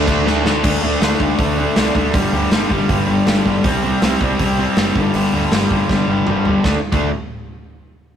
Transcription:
0.00 0.62 D3 loud
0.00 0.63 A3 medium
0.00 0.63 D4 loud
0.07 0.24 D2 medium
0.07 0.25 D3 medium
0.07 0.25 A3 medium
0.07 0.26 D4 medium
0.07 kick loud
0.07 crash medium
0.26 0.43 D2 medium
0.26 0.43 D3 medium
0.26 0.44 A3 medium
0.26 0.45 D4 loud
0.26 snare medium
0.44 0.64 D2 medium
0.44 0.62 D3 medium
0.44 0.63 A3 medium
0.44 0.63 D4 medium
0.44 snare medium
0.63 0.76 D2 loud
0.63 0.81 D3 medium
0.63 0.82 A3 medium
0.63 0.83 D4 loud
0.63 kick loud
0.63 crash loud
0.82 0.95 D2 medium
0.82 1.00 D3 medium
0.82 1.00 A3 medium
0.82 1.02 D4 medium
1.01 1.14 D2 medium
1.01 1.18 D3 medium
1.01 1.19 A3 medium
1.01 1.21 D4 medium
1.01 snare loud
1.01 open hi-hat soft
1.20 1.32 D2 medium
1.20 1.37 D3 loud
1.20 1.38 A3 loud
1.20 1.39 D4 loud
1.20 kick medium
1.39 1.64 D2 medium
1.39 1.56 D3 medium
1.39 1.57 A3 medium
1.39 1.58 D4 medium
1.39 kick loud
1.39 open hi-hat medium
1.58 1.75 D3 medium
1.58 1.76 A3 loud
1.58 1.77 D4 medium
1.76 1.89 C2 medium
1.76 1.94 D3 medium
1.76 1.95 A3 medium
1.76 1.95 D4 medium
1.76 snare loud
1.76 open hi-hat soft
1.95 2.15 D2 medium
1.95 2.13 D3 medium
1.95 2.13 A3 medium
1.95 2.14 D4 medium
1.95 kick medium
2.14 2.26 G1 medium
2.14 2.31 G2 medium
2.14 2.32 D3 medium
2.14 2.34 G3 loud
2.14 kick loud
2.14 open hi-hat medium
2.32 2.45 D2 medium
2.32 2.50 G2 medium
2.32 2.51 D3 medium
2.32 2.52 G3 medium
2.51 2.64 G1 loud
2.51 2.69 G2 medium
2.51 2.70 D3 medium
2.51 2.71 G3 medium
2.51 snare loud
2.51 open hi-hat medium
2.70 2.83 G1 medium
2.70 2.87 G2 loud
2.70 2.88 D3 loud
2.70 2.90 G3 loud
2.70 kick medium
2.89 3.02 G1 medium
2.89 3.06 G2 medium
2.89 3.07 D3 medium
2.89 3.08 G3 medium
2.89 kick loud
2.89 open hi-hat medium
3.07 3.21 G1 medium
3.07 3.26 G2 medium
3.07 3.26 D3 loud
3.07 3.28 G3 loud
3.27 3.39 G1 medium
3.27 3.45 G2 medium
3.27 3.45 D3 medium
3.27 3.47 G3 medium
3.27 snare loud
3.27 open hi-hat medium
3.45 3.58 G1 medium
3.45 3.63 G2 medium
3.45 3.64 D3 medium
3.45 3.65 G3 loud
3.45 kick medium
3.64 3.77 C2 loud
3.64 3.82 C3 medium
3.64 3.84 G3 medium
3.64 3.84 C4 loud
3.64 kick loud
3.64 open hi-hat medium
3.83 3.95 C2 medium
3.83 4.01 C3 medium
3.83 4.03 G3 medium
3.83 4.03 C4 medium
4.02 4.14 C2 medium
4.02 4.20 C3 medium
4.02 4.22 G3 medium
4.02 4.22 C4 medium
4.02 snare loud
4.02 open hi-hat soft
4.21 4.33 C2 medium
4.21 4.39 C3 loud
4.21 4.39 G3 loud
4.21 4.40 C4 loud
4.21 kick medium
4.39 4.65 C2 medium
4.39 4.57 C3 medium
4.39 4.58 G3 medium
4.39 4.58 C4 medium
4.39 kick loud
4.39 open hi-hat medium
4.58 4.76 C3 medium
4.58 4.77 G3 medium
4.58 4.77 C4 loud
4.77 4.90 F#1 medium
4.77 4.95 C3 medium
4.77 4.95 G3 medium
4.77 4.95 C4 medium
4.77 snare loud
4.77 open hi-hat medium
4.95 5.08 G1 medium
4.95 5.13 G2 medium
4.95 5.14 D3 loud
4.95 5.14 G3 medium
4.95 kick medium
5.14 5.27 G1 medium
5.14 5.32 G2 medium
5.14 5.33 D3 medium
5.14 5.33 G3 medium
5.14 open hi-hat medium
5.33 5.45 D2 medium
5.33 5.51 G2 medium
5.33 5.52 D3 medium
5.33 5.53 G3 medium
5.51 5.65 G1 medium
5.51 5.70 G2 medium
5.51 5.71 D3 medium
5.51 5.71 G3 medium
5.51 snare loud
5.51 open hi-hat medium
5.70 5.83 G1 medium
5.70 5.88 G2 loud
5.70 5.89 D3 loud
5.70 5.90 G3 loud
5.70 kick medium
5.89 6.02 G1 medium
5.89 6.07 G2 medium
5.89 6.08 D3 medium
5.89 6.09 G3 medium
5.89 kick loud
5.89 snare medium
6.08 6.21 G1 medium
6.08 6.26 G2 medium
6.08 6.27 D3 medium
6.08 6.28 G3 medium
6.08 high tom medium
6.27 6.39 G1 medium
6.27 6.45 G2 medium
6.27 6.45 D3 medium
6.27 6.46 G3 medium
6.27 mid tom medium
6.45 6.58 G1 medium
6.45 6.64 G2 medium
6.45 6.63 D3 medium
6.45 6.64 G3 medium
6.45 floor tom medium
6.64 6.75 D2 medium
6.64 6.76 D3 medium
6.64 6.76 A3 medium
6.64 6.77 D4 medium
6.64 kick loud
6.64 snare medium
6.92 7.10 D2 medium
6.92 7.08 D3 medium
6.92 7.08 A3 medium
6.92 7.08 D4 medium
6.92 kick loud
6.92 crash medium

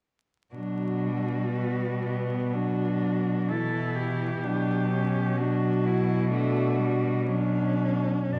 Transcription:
0.54 4.40 B2 soft
0.54 1.07 F#3 soft
0.54 1.50 D4 soft
0.54 2.49 F#4 soft
1.06 2.56 G3 soft
1.53 2.02 B3 soft
2.03 2.56 B3 soft
2.52 3.52 F#3 soft
2.52 3.52 D4 soft
2.52 3.50 F#4 soft
3.48 4.46 E3 soft
3.48 4.46 E4 soft
3.48 3.97 A4 soft
3.96 5.38 G4 soft
4.43 8.06 B2 soft
4.43 5.38 F#3 soft
4.43 4.91 D4 soft
4.93 5.40 C#4 soft
5.37 6.30 F#3 soft
5.37 5.88 D4 soft
5.37 6.31 F#4 soft
5.86 6.32 E4 soft
6.31 6.80 A3 soft
6.31 7.27 D4 soft
6.31 7.27 F#4 soft
6.78 7.28 G3 soft
7.26 8.10 F#3 soft
7.26 8.34 C#4 soft
7.26 8.10 D4 soft
8.30 8.39 F#2 soft
8.30 8.39 B2 soft
8.30 8.39 B3 soft
8.30 8.39 D4 soft

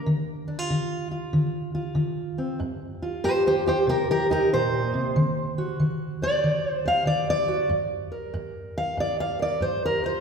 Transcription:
0.06 0.65 D3 medium
0.48 0.59 D4 soft
0.59 1.10 F4 soft
0.70 1.29 D3 medium
1.11 1.73 F4 soft
1.33 1.92 D3 medium
1.75 2.58 F4 medium
1.95 2.55 D3 medium
2.38 2.58 C4 soft
2.60 3.20 G2 medium
3.02 3.65 F4 medium
3.24 3.84 G2 medium
3.24 3.31 G4 medium
3.24 3.46 C5 loud
3.47 3.60 G4 medium
3.47 3.67 C5 medium
3.66 3.86 F4 soft
3.66 3.77 G4 medium
3.66 3.89 C5 loud
3.87 4.47 C3 medium
3.87 3.96 G4 medium
3.87 4.10 A#4 loud
4.11 4.23 G4 medium
4.11 4.31 A#4 loud
4.30 5.13 D#4 medium
4.30 4.41 G4 medium
4.30 4.53 A#4 loud
4.53 4.94 A#2 medium
4.53 5.80 C5 loud
4.94 5.16 C3 medium
5.16 5.75 D3 medium
5.58 7.47 F#4 soft
5.80 6.39 D3 medium
6.22 6.70 C5 medium
6.22 6.70 D5 loud
6.44 7.03 D3 medium
6.70 6.85 C5 loud
6.85 7.69 C5 soft
6.85 7.07 F5 loud
7.05 7.66 D3 medium
7.05 7.28 D5 medium
7.30 7.72 D5 loud
7.48 7.68 F#4 soft
7.69 8.30 G2 medium
8.12 9.39 A#4 soft
8.34 8.94 G2 medium
8.78 8.99 F5 loud
8.97 9.57 G2 medium
8.97 9.20 D5 loud
9.20 9.41 F5 loud
9.39 9.62 A#4 soft
9.39 9.63 D5 medium
9.60 10.20 G2 medium
9.60 9.84 C5 medium
9.86 10.05 A#4 loud
10.04 10.20 F4 soft
10.04 10.20 C5 medium

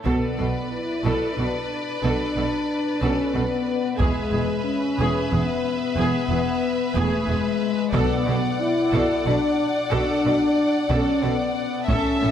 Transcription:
0.04 0.14 B1 soft
0.04 0.14 B2 soft
0.04 1.01 B2 soft
0.04 0.67 B3 soft
0.04 0.36 A4 soft
0.04 3.97 B4 soft
0.04 3.97 D5 soft
0.04 taiko soft
0.37 0.47 B1 soft
0.37 0.47 B2 soft
0.37 0.45 A4 soft
0.72 1.38 E4 medium
1.05 1.13 B1 soft
1.05 1.13 B2 soft
1.05 1.36 A4 soft
1.35 1.45 B1 soft
1.35 1.47 B2 soft
1.35 2.00 D4 soft
1.35 1.45 A4 soft
2.02 2.11 B1 soft
2.02 2.12 B2 soft
2.02 2.99 D4 medium
2.02 2.34 A4 soft
2.36 2.45 B1 soft
2.36 2.44 B2 soft
2.36 2.45 A4 soft
3.00 3.11 B1 soft
3.00 3.10 B2 soft
3.00 3.34 C#4 medium
3.00 3.32 A4 soft
3.34 3.43 B1 soft
3.34 3.43 B2 soft
3.34 4.00 B3 medium
3.34 3.42 A4 soft
3.98 4.08 E1 soft
3.98 4.08 E2 medium
3.98 4.66 G#3 soft
3.98 4.30 G#4 soft
3.98 7.90 B4 soft
3.98 7.90 E5 soft
3.98 taiko soft
4.32 4.41 E1 soft
4.32 4.41 E2 soft
4.32 4.40 G#4 soft
4.65 5.30 C#4 medium
4.99 5.07 E1 medium
4.99 5.08 E2 soft
4.99 5.30 G#4 soft
5.31 5.40 E1 soft
5.31 5.39 E2 soft
5.31 5.97 B3 soft
5.31 5.41 G#4 soft
5.96 6.05 E1 medium
5.96 6.04 E2 medium
5.96 6.94 B3 medium
5.96 6.28 G#4 soft
6.29 6.37 E1 soft
6.29 6.37 E2 soft
6.29 6.39 G#4 soft
6.95 7.03 E1 medium
6.95 7.04 E2 medium
6.95 7.29 A3 medium
6.95 7.26 G#4 soft
7.27 7.35 E1 soft
7.27 7.36 E2 soft
7.27 7.95 G#3 medium
7.27 7.37 G#4 soft
7.93 8.01 B1 medium
7.93 8.01 B2 medium
7.93 8.88 B2 soft
7.93 8.58 B3 medium
7.93 8.25 A4 medium
7.93 11.84 D5 medium
7.93 11.84 F#5 soft
7.93 taiko soft
8.27 8.35 B1 soft
8.27 8.35 B2 soft
8.27 8.37 A4 soft
8.61 9.26 E4 medium
8.93 9.01 B1 medium
8.93 9.01 B2 medium
8.93 9.23 A4 soft
8.93 taiko soft
9.25 9.33 B1 soft
9.25 9.35 B2 soft
9.25 9.77 D4 medium
9.25 9.35 A4 soft
9.91 10.00 B1 medium
9.91 9.99 B2 medium
9.91 10.89 D4 medium
9.91 10.22 A4 medium
10.25 10.33 B1 soft
10.25 10.33 B2 soft
10.25 10.34 A4 soft
10.90 10.99 B1 medium
10.90 10.98 B2 medium
10.90 11.22 C#4 medium
10.90 11.21 A4 soft
11.22 11.31 B1 soft
11.22 11.30 B2 soft
11.22 11.89 B3 medium
11.22 11.32 A4 soft
11.87 11.98 A1 medium
11.87 11.96 A2 medium
11.87 12.31 C#4 medium
11.87 12.20 A4 medium
11.87 12.31 E5 medium
11.87 12.31 A5 soft
11.87 taiko soft
12.22 12.31 A1 soft
12.22 12.30 A2 soft
12.22 12.31 A4 soft

